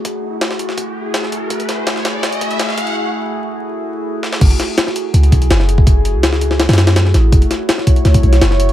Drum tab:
CC |--------------------------------|--------------------------------|--------------------------------|x-------------------------------|
HH |x-------x---x---x-------x---x---|x-x-x---x---x---x-x-x-x-x---x-x-|--------------------------------|x-x-x---x---x---x-x-x-x-x---x---|
SD |--------o-o---o---------o-o-----|----o---o-o-o---o-------o-o-----|----------------------------o-o-|----o---o-o-------------o-o-----|
BD |o---------------o---------------|o-------------------o-------o---|--------------------------------|o-------------------o---------o-|

CC |--------------------------------|--------------------------------|
HH |x---x---x---x---x-xxx-x-x---x---|x-x-x---x---x-x-x-x-x-x-x---x-x-|
SD |--------o-o---o-o-ooo-o-o-o-o---|----o---o-o-----o-----o-o-o-----|
BD |o-------------------------------|o-----------o-----o-------------|